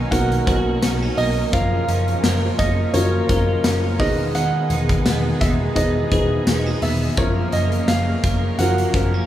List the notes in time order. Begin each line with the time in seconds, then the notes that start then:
Already playing: B2 D#3 F#3 A#3 B3 C#4 D#4 F#4 A#4 G#5
0.11 B1 A#3 B3 D#4 F#4 A#4 F#5, kick, closed hi-hat
0.32 closed hi-hat
0.46 B1 B2 D#4 F#4 A#4, kick, closed hi-hat
0.82 B1 C#4, snare, closed hi-hat, tambourine
1.02 D#4
1.18 B1 A#3 D#5, open hi-hat
1.52 F#1 C#3 F3 C#4 F4 A#4 F5, kick, closed hi-hat
1.88 F#1 C#4, closed hi-hat
2.08 closed hi-hat
2.23 F#1 A#3, snare, closed hi-hat, tambourine
2.59 F#1 C#4 D#5, kick, closed hi-hat
2.93 F#1 A#3 C#4 F4 F#4 A#4 C#5, closed hi-hat
3.29 F#1 C#4 F4 A#4, kick, closed hi-hat
3.64 F#1 C#4, snare, closed hi-hat, tambourine
3.99 E1 D#3 G#3 B3 D#4 G#4 B4 D#5, kick, open hi-hat
4.35 D#3 F#5, closed hi-hat
4.70 E1 D#4, closed hi-hat
4.89 kick, closed hi-hat
5.06 E1 B3, snare, closed hi-hat, tambourine
5.41 E1 D#4 E5, kick, closed hi-hat
5.75 E1 B3 D#4 E4 G#4 B4 D#5, kick, closed hi-hat
6.11 E1 B3 D#4 G#4 B4, kick, closed hi-hat
6.47 E1 C#4, snare, closed hi-hat, tambourine
6.67 D#4
6.82 E1 B3 E5, open hi-hat
7.17 F#1 C#3 F3 A#3 C#4 F4 A#4 C#5, kick, closed hi-hat
7.52 F#1 A#3 D#5, closed hi-hat
7.72 closed hi-hat
7.88 F#1 F3 F5, snare, closed hi-hat, tambourine
8.24 F#1 A#3, kick, closed hi-hat
8.59 F#1 F3 C#4 F4 F#4 A#4 F#5, closed hi-hat
8.78 closed hi-hat
8.94 F#1 B3 C#4 A#4 F#5, kick, closed hi-hat
9.14 C#4